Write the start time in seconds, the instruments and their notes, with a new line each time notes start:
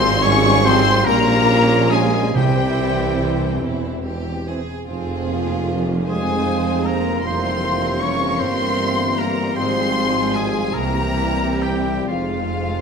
Already playing: double bass section G#1, tuba G#1, cello section G#2, viola section G3 C4, french horn section C4, violin section F4 G#4 C6, oboe C5, flute section C6
0.21 oboe C#5, flute section C#6, violin section C#6
0.26 french horn section C#4
0.63 trombone section F3 C4, french horn section C4, oboe C5, violin section C6, flute section C6
1.04 tuba A#1, double bass section A#1, cello section A#2, french horn section A#3, viola section C#4, violin section F4 A#5, oboe A#4, flute section A#5
1.90 trombone section F3 C#4, french horn section G#3, oboe G#4, violin section G#5, flute section G#5
2.34 tuba C2, double bass section C2, cello section C3, timpani C3, viola section E3 C4, french horn section G3, violin section E4 C5 G5, oboe G4, flute section G5
3.19 trombone section E3 C4
3.61 tuba E1, double bass section E1, cello section E2, violin section E4
4.05 violin section G4
4.47 trombone section E3 C4, violin section G#4
4.87 tuba F1, double bass section F1, cello section F2, viola section F3 C4, trombone section F3 C4, violin section F4 G#4
5.31 viola section A#3
5.68 viola section A#3
6.07 trombone section F3 C4, french horn section G#3, viola section G#3 C4, violin section F4 C5 G#5, oboe G#4, flute section G#5
6.83 french horn section A#3, oboe A#4, violin section A#5, flute section A#5
7.22 tuba F1, cello section F2, trombone section E3 A#3, viola section G3 C4, french horn section C4, violin section A#4 C6, oboe C5, flute section C6
7.27 double bass section F1
8.00 french horn section C#4, oboe C#5, violin section C#6, flute section C#6
8.38 tuba G1, double bass section G1, cello section G2, trombone section E3, viola section G3, french horn section C4, oboe C5, violin section C6, flute section C6
8.42 trombone section A#3
9.16 french horn section A#3, oboe A#4, flute section A#5, violin section A#5
9.54 tuba G#1, cello section G#2, trombone section F3 G#3, french horn section C4, viola section C4, violin section F4 G#4 C6, oboe C5, flute section C6
9.58 double bass section G#1
10.33 french horn section G#3, oboe G#4, violin section G#5, flute section G#5
10.74 tuba C2, double bass section C2, cello section C3, trombone section E3 G3, french horn section A#3, violin section E4 G4 A#5, oboe A#4, flute section A#5
10.78 viola section G3 C4
11.62 french horn section G3, oboe G4, violin section G5, flute section G5
12.08 tuba F1, double bass section F1, cello section F2, trombone section F3 G#3, french horn section F3, viola section G#3 C4, oboe F4, violin section F4 F5, flute section F5